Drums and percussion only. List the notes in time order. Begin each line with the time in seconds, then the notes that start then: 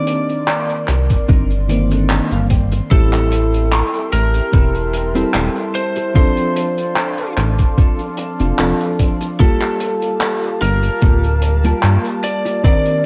0.07 closed hi-hat
0.29 closed hi-hat, cabasa
0.48 clap, closed hi-hat, cabasa
0.69 closed hi-hat, cabasa
0.88 clap, closed hi-hat
1.10 kick, closed hi-hat, cabasa
1.29 kick, closed hi-hat, cabasa
1.50 closed hi-hat, cabasa
1.69 closed hi-hat
1.91 closed hi-hat, cabasa
2.09 clap, closed hi-hat, cabasa
2.31 closed hi-hat, cabasa
2.50 kick, closed hi-hat
2.72 closed hi-hat, cabasa
2.91 kick, closed hi-hat, cabasa
3.13 clap, closed hi-hat, cabasa
3.32 closed hi-hat
3.53 closed hi-hat, cabasa
3.72 clap, closed hi-hat, cabasa
3.94 closed hi-hat, cabasa
4.12 closed hi-hat
4.34 closed hi-hat, cabasa
4.53 kick, closed hi-hat, cabasa
4.75 closed hi-hat, cabasa
4.93 closed hi-hat
5.15 closed hi-hat, cabasa
5.34 clap, closed hi-hat, cabasa
5.56 closed hi-hat, cabasa
5.74 closed hi-hat
5.96 closed hi-hat, cabasa
6.15 kick, closed hi-hat, cabasa
6.37 closed hi-hat, cabasa
6.56 closed hi-hat
6.78 closed hi-hat, cabasa
6.96 clap, closed hi-hat, cabasa
7.18 closed hi-hat, cabasa
7.37 clap, closed hi-hat
7.58 kick, closed hi-hat, cabasa
7.78 kick, closed hi-hat, cabasa
7.99 closed hi-hat, cabasa
8.17 closed hi-hat
8.40 closed hi-hat, cabasa
8.59 clap, closed hi-hat, cabasa
8.80 closed hi-hat, cabasa
8.99 kick, closed hi-hat
9.21 closed hi-hat, cabasa
9.39 kick, closed hi-hat, cabasa
9.61 clap, closed hi-hat, cabasa
9.80 closed hi-hat
10.02 closed hi-hat, cabasa
10.21 clap, closed hi-hat, cabasa
10.43 closed hi-hat, cabasa
10.62 closed hi-hat
10.83 closed hi-hat, cabasa
11.02 kick, closed hi-hat, cabasa
11.23 closed hi-hat, cabasa
11.42 closed hi-hat
11.64 closed hi-hat, cabasa
11.83 clap, closed hi-hat, cabasa
12.05 closed hi-hat, cabasa
12.23 closed hi-hat
12.45 closed hi-hat, cabasa
12.64 kick, closed hi-hat, cabasa
12.86 closed hi-hat, cabasa